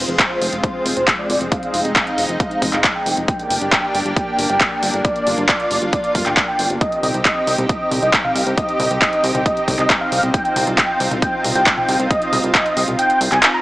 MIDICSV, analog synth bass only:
0, 0, Header, 1, 2, 480
1, 0, Start_track
1, 0, Key_signature, -3, "minor"
1, 0, Tempo, 441176
1, 1652, Time_signature, 4, 2, 24, 8
1, 14814, End_track
2, 0, Start_track
2, 0, Title_t, "Analog synth bass"
2, 0, Program_c, 0, 38
2, 91, Note_on_c, 0, 29, 79
2, 181, Note_off_c, 0, 29, 0
2, 450, Note_on_c, 0, 29, 97
2, 541, Note_off_c, 0, 29, 0
2, 571, Note_on_c, 0, 29, 78
2, 661, Note_off_c, 0, 29, 0
2, 931, Note_on_c, 0, 29, 94
2, 1021, Note_off_c, 0, 29, 0
2, 1051, Note_on_c, 0, 29, 82
2, 1141, Note_off_c, 0, 29, 0
2, 1411, Note_on_c, 0, 29, 91
2, 1501, Note_off_c, 0, 29, 0
2, 1530, Note_on_c, 0, 29, 79
2, 1621, Note_off_c, 0, 29, 0
2, 1891, Note_on_c, 0, 29, 93
2, 1981, Note_off_c, 0, 29, 0
2, 2011, Note_on_c, 0, 29, 81
2, 2101, Note_off_c, 0, 29, 0
2, 2370, Note_on_c, 0, 29, 94
2, 2461, Note_off_c, 0, 29, 0
2, 2491, Note_on_c, 0, 29, 84
2, 2581, Note_off_c, 0, 29, 0
2, 2852, Note_on_c, 0, 29, 95
2, 2941, Note_off_c, 0, 29, 0
2, 2971, Note_on_c, 0, 29, 84
2, 3061, Note_off_c, 0, 29, 0
2, 3330, Note_on_c, 0, 29, 93
2, 3421, Note_off_c, 0, 29, 0
2, 3450, Note_on_c, 0, 29, 77
2, 3541, Note_off_c, 0, 29, 0
2, 3811, Note_on_c, 0, 31, 93
2, 3901, Note_off_c, 0, 31, 0
2, 3931, Note_on_c, 0, 31, 82
2, 4021, Note_off_c, 0, 31, 0
2, 4291, Note_on_c, 0, 31, 97
2, 4381, Note_off_c, 0, 31, 0
2, 4412, Note_on_c, 0, 31, 81
2, 4501, Note_off_c, 0, 31, 0
2, 4771, Note_on_c, 0, 31, 95
2, 4861, Note_off_c, 0, 31, 0
2, 4893, Note_on_c, 0, 31, 83
2, 4982, Note_off_c, 0, 31, 0
2, 5252, Note_on_c, 0, 31, 92
2, 5342, Note_off_c, 0, 31, 0
2, 5373, Note_on_c, 0, 31, 77
2, 5462, Note_off_c, 0, 31, 0
2, 5732, Note_on_c, 0, 31, 93
2, 5821, Note_off_c, 0, 31, 0
2, 5851, Note_on_c, 0, 31, 81
2, 5941, Note_off_c, 0, 31, 0
2, 6212, Note_on_c, 0, 31, 92
2, 6301, Note_off_c, 0, 31, 0
2, 6331, Note_on_c, 0, 31, 80
2, 6421, Note_off_c, 0, 31, 0
2, 6691, Note_on_c, 0, 31, 99
2, 6781, Note_off_c, 0, 31, 0
2, 6811, Note_on_c, 0, 31, 82
2, 6901, Note_off_c, 0, 31, 0
2, 7171, Note_on_c, 0, 31, 92
2, 7261, Note_off_c, 0, 31, 0
2, 7291, Note_on_c, 0, 31, 80
2, 7381, Note_off_c, 0, 31, 0
2, 7651, Note_on_c, 0, 36, 95
2, 7741, Note_off_c, 0, 36, 0
2, 7770, Note_on_c, 0, 36, 78
2, 7861, Note_off_c, 0, 36, 0
2, 8131, Note_on_c, 0, 36, 92
2, 8221, Note_off_c, 0, 36, 0
2, 8251, Note_on_c, 0, 36, 84
2, 8341, Note_off_c, 0, 36, 0
2, 8610, Note_on_c, 0, 36, 96
2, 8701, Note_off_c, 0, 36, 0
2, 8730, Note_on_c, 0, 36, 83
2, 8820, Note_off_c, 0, 36, 0
2, 9089, Note_on_c, 0, 36, 92
2, 9180, Note_off_c, 0, 36, 0
2, 9210, Note_on_c, 0, 36, 81
2, 9301, Note_off_c, 0, 36, 0
2, 9570, Note_on_c, 0, 36, 98
2, 9661, Note_off_c, 0, 36, 0
2, 9690, Note_on_c, 0, 36, 80
2, 9781, Note_off_c, 0, 36, 0
2, 10050, Note_on_c, 0, 36, 96
2, 10141, Note_off_c, 0, 36, 0
2, 10170, Note_on_c, 0, 36, 84
2, 10261, Note_off_c, 0, 36, 0
2, 10530, Note_on_c, 0, 36, 96
2, 10621, Note_off_c, 0, 36, 0
2, 10650, Note_on_c, 0, 36, 83
2, 10740, Note_off_c, 0, 36, 0
2, 11010, Note_on_c, 0, 36, 96
2, 11101, Note_off_c, 0, 36, 0
2, 11130, Note_on_c, 0, 36, 80
2, 11221, Note_off_c, 0, 36, 0
2, 11490, Note_on_c, 0, 36, 96
2, 11581, Note_off_c, 0, 36, 0
2, 11610, Note_on_c, 0, 36, 83
2, 11701, Note_off_c, 0, 36, 0
2, 11970, Note_on_c, 0, 36, 97
2, 12061, Note_off_c, 0, 36, 0
2, 12090, Note_on_c, 0, 36, 80
2, 12181, Note_off_c, 0, 36, 0
2, 12450, Note_on_c, 0, 36, 93
2, 12541, Note_off_c, 0, 36, 0
2, 12571, Note_on_c, 0, 36, 86
2, 12661, Note_off_c, 0, 36, 0
2, 12931, Note_on_c, 0, 36, 93
2, 13021, Note_off_c, 0, 36, 0
2, 13051, Note_on_c, 0, 36, 80
2, 13141, Note_off_c, 0, 36, 0
2, 13411, Note_on_c, 0, 36, 97
2, 13501, Note_off_c, 0, 36, 0
2, 13532, Note_on_c, 0, 36, 83
2, 13621, Note_off_c, 0, 36, 0
2, 13891, Note_on_c, 0, 36, 97
2, 13981, Note_off_c, 0, 36, 0
2, 14010, Note_on_c, 0, 36, 84
2, 14101, Note_off_c, 0, 36, 0
2, 14372, Note_on_c, 0, 36, 93
2, 14461, Note_off_c, 0, 36, 0
2, 14491, Note_on_c, 0, 36, 83
2, 14581, Note_off_c, 0, 36, 0
2, 14814, End_track
0, 0, End_of_file